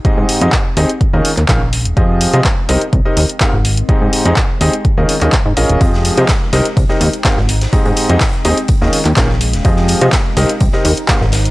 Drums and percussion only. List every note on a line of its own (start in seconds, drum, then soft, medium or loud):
0.05 kick loud
0.05 closed hi-hat medium
0.29 open hi-hat loud
0.41 closed hi-hat medium
0.52 kick loud
0.52 clap loud
0.52 closed hi-hat medium
0.77 open hi-hat loud
0.89 closed hi-hat medium
1.01 kick loud
1.01 closed hi-hat medium
1.25 open hi-hat loud
1.37 clap soft
1.37 closed hi-hat medium
1.48 kick loud
1.48 clap loud
1.48 closed hi-hat medium
1.73 open hi-hat loud
1.85 closed hi-hat medium
1.97 kick loud
1.97 closed hi-hat medium
2.21 open hi-hat loud
2.33 closed hi-hat medium
2.44 kick loud
2.44 clap loud
2.44 closed hi-hat soft
2.69 open hi-hat loud
2.81 closed hi-hat medium
2.93 kick loud
2.93 closed hi-hat medium
3.17 open hi-hat loud
3.29 closed hi-hat medium
3.40 kick loud
3.40 clap loud
3.40 closed hi-hat soft
3.65 open hi-hat loud
3.77 closed hi-hat medium
3.89 kick loud
3.89 closed hi-hat soft
4.13 open hi-hat loud
4.25 closed hi-hat medium
4.36 kick loud
4.36 clap loud
4.36 closed hi-hat medium
4.61 open hi-hat loud
4.73 closed hi-hat medium
4.85 kick loud
4.85 closed hi-hat medium
5.09 open hi-hat loud
5.21 clap soft
5.21 closed hi-hat medium
5.32 kick loud
5.32 clap loud
5.32 closed hi-hat soft
5.57 open hi-hat loud
5.69 closed hi-hat medium
5.81 kick loud
5.81 closed hi-hat soft
5.81 closed hi-hat medium
5.94 snare soft
6.05 closed hi-hat medium
6.05 open hi-hat loud
6.17 closed hi-hat medium
6.28 kick loud
6.28 snare loud
6.28 clap loud
6.28 closed hi-hat medium
6.53 snare medium
6.53 closed hi-hat medium
6.53 open hi-hat loud
6.65 closed hi-hat medium
6.77 kick loud
6.77 closed hi-hat medium
6.89 snare soft
7.01 closed hi-hat medium
7.01 open hi-hat loud
7.13 closed hi-hat medium
7.24 kick loud
7.24 snare loud
7.24 clap loud
7.24 closed hi-hat medium
7.38 snare soft
7.49 closed hi-hat medium
7.49 open hi-hat loud
7.61 snare medium
7.61 closed hi-hat medium
7.73 kick loud
7.73 closed hi-hat medium
7.85 closed hi-hat soft
7.96 closed hi-hat medium
7.96 open hi-hat loud
8.09 closed hi-hat medium
8.20 kick loud
8.20 snare loud
8.20 clap loud
8.20 closed hi-hat medium
8.20 open hi-hat medium
8.33 closed hi-hat soft
8.45 closed hi-hat medium
8.45 open hi-hat loud
8.57 closed hi-hat medium
8.68 kick loud
8.68 closed hi-hat medium
8.82 snare soft
8.93 closed hi-hat medium
8.93 open hi-hat loud
9.05 clap soft
9.05 closed hi-hat medium
9.16 kick loud
9.16 snare loud
9.16 clap loud
9.16 closed hi-hat medium
9.29 snare soft
9.41 closed hi-hat medium
9.41 open hi-hat loud
9.53 snare soft
9.53 closed hi-hat medium
9.65 kick loud
9.65 closed hi-hat medium
9.77 snare soft
9.88 closed hi-hat medium
9.88 open hi-hat loud
10.01 closed hi-hat medium
10.12 kick loud
10.12 snare loud
10.12 clap loud
10.12 closed hi-hat medium
10.37 snare medium
10.37 closed hi-hat medium
10.37 open hi-hat medium
10.49 closed hi-hat medium
10.61 kick loud
10.61 closed hi-hat medium
10.72 snare soft
10.85 closed hi-hat medium
10.85 open hi-hat loud
10.97 closed hi-hat medium
11.07 kick loud
11.07 snare loud
11.07 clap loud
11.07 closed hi-hat medium
11.22 snare soft
11.32 snare loud
11.32 closed hi-hat medium
11.32 open hi-hat loud
11.45 closed hi-hat medium